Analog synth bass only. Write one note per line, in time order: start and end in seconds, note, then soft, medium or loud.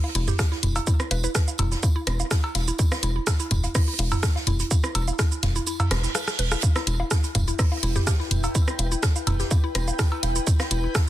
0.15 0.31 E1 loud
0.63 0.79 E1 medium
1.11 1.27 E1 loud
1.59 1.75 E1 medium
2.07 2.23 E1 loud
2.55 2.71 E1 medium
3.03 3.19 E1 loud
3.51 3.67 E1 medium
3.99 4.15 E1 loud
4.47 4.63 E1 medium
4.95 5.11 E1 loud
5.43 5.59 E1 medium
5.91 6.07 E1 loud
6.39 6.55 E1 medium
6.87 7.03 E1 loud
7.35 7.51 E1 loud
7.83 7.99 E1 loud
8.31 8.47 E1 medium
8.79 8.95 E1 loud
9.27 9.43 E1 medium
9.75 9.91 E1 loud
10.23 10.39 E1 medium
10.71 10.87 E1 loud